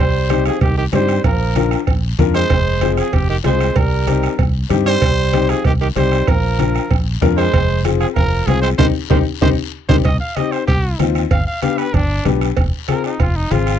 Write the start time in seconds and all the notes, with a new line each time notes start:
Already playing: G3 C5
0.00 C2
0.29 C4 D#4 G4, bombo rim, cowbell, high conga, short guiro
0.45 F3 G#4, bombo rim, short guiro
0.61 C2 D#3 G4, bombo low, bombo rim, cowbell, long guiro
0.77 D#3 G4
0.92 G2 G3 C4 D#4 G4 C5, bombo rim, cowbell, high conga, low timbale, short guiro
1.08 bombo rim, short guiro
1.24 A#1 F3 A#4, bombo low, bombo rim, cowbell, long guiro
1.56 D4 F4 A#4, bombo rim, cowbell, high conga, short guiro
1.71 bombo rim, short guiro
1.87 A#1, bombo low, bombo rim, cowbell, long guiro
2.19 F2 D4 F4 A#4, bombo low, bombo rim, cowbell, high conga, low conga, short guiro
2.34 G#3 C5, bombo rim, short guiro
2.50 F1, bombo low, bombo rim, cowbell, long guiro
2.81 C4 F4 G#4, bombo rim, cowbell, high conga, short guiro
2.97 F3 G#4, bombo rim, short guiro
3.13 F1 C3 G4, bombo low, bombo rim, cowbell, long guiro
3.29 D#3 G4
3.44 C2 G#3 C4 F4 G#4 C5, bombo rim, cowbell, high conga, low timbale, short guiro
3.60 bombo rim, short guiro
3.76 C2 G3 A#4, bombo low, bombo rim, cowbell, long guiro
4.07 C4 D#4 G4, bombo rim, cowbell, high conga, short guiro
4.23 bombo rim, short guiro
4.39 C2, bombo low, bombo rim, cowbell, high conga, low conga, long guiro
4.69 G2 C4 D#4 G4, bombo rim, cowbell, high conga, low conga, short guiro
4.86 G3 C5, bombo rim, short guiro
5.02 C2, bombo low, bombo rim, cowbell, long guiro
5.33 C4 D#4 G4, bombo rim, cowbell, high conga, short guiro
5.49 F3 G#4, bombo rim, short guiro
5.64 C2 D#3 G4, bombo low, bombo rim, cowbell, long guiro
5.81 D#3 G4
5.96 C2 G3 C4 D#4 G4 C5, bombo rim, cowbell, high conga, short guiro
6.12 bombo rim, short guiro
6.27 A#1 F3 A#4, bombo low, bombo rim, cowbell, long guiro
6.59 D4 F4 A#4, bombo rim, cowbell, high conga, short guiro
6.75 bombo rim, short guiro
6.90 A#1, bombo low, bombo rim, cowbell, high conga, long guiro
7.21 F2 D4 F4 A#4, bombo low, bombo rim, cowbell, high conga, low conga, low timbale, short guiro
7.37 G#3 C5, bombo rim, short guiro
7.53 F1, bombo low, bombo rim, cowbell, long guiro
7.85 C4 F4 G#4, bombo rim, cowbell, high conga, short guiro
8.00 F3 G#4, bombo rim, short guiro
8.15 F1 F3 A#4, bombo low, bombo rim, cowbell, long guiro
8.46 C2 F3 C4 F4 G#4, bombo rim, cowbell, high conga, low timbale, short guiro
8.62 G#3 C5, bombo rim, short guiro
8.78 C2 D#3 C4 D#4 G4 C5, bombo low, high conga, high timbale, long guiro
9.10 C2 D#3 C4 D#4 G4 C5, bombo low, high conga, high timbale
9.42 C2 D#3 C4 D#4 G4 C5, bombo low, high conga, high timbale, long guiro
9.89 C2 D#3 C4 D#4 G4 C5, bombo low, high conga, high timbale, long guiro
10.04 C2 D#5, bombo low, bombo rim, cowbell, high conga, long guiro
10.20 F5
10.36 C4 D#4 G4 D#5, bombo rim, cowbell, high conga, short guiro
10.52 C5, bombo rim, short guiro
10.67 C2 G4, bombo low, bombo rim, cowbell, long guiro
10.99 D#2 C4 D#4 F4, bombo rim, cowbell, high conga, low timbale, short guiro
11.15 bombo rim, short guiro
11.31 G1 F5, bombo low, bombo rim, cowbell, long guiro
11.47 F5
11.62 B3 D4 G4 F5, bombo rim, cowbell, high conga, short guiro
11.78 B4, bombo rim, short guiro
11.94 G1 D4, bombo low, bombo rim, cowbell, high conga, low conga, long guiro
12.25 B1 B3 D4 G4, bombo rim, cowbell, high conga, low conga, low timbale, short guiro
12.41 bombo rim, short guiro
12.57 F1, bombo low, bombo rim, cowbell, high conga, long guiro
12.88 C4 F4 G#4 A#4, bombo rim, cowbell, high conga, short guiro
13.04 D#4, bombo rim, short guiro
13.20 F1 F4, bombo low, bombo rim, cowbell, long guiro
13.36 D#4
13.51 G#1 C4 F4 G#4, bombo rim, cowbell, high conga, short guiro
13.67 bombo rim, short guiro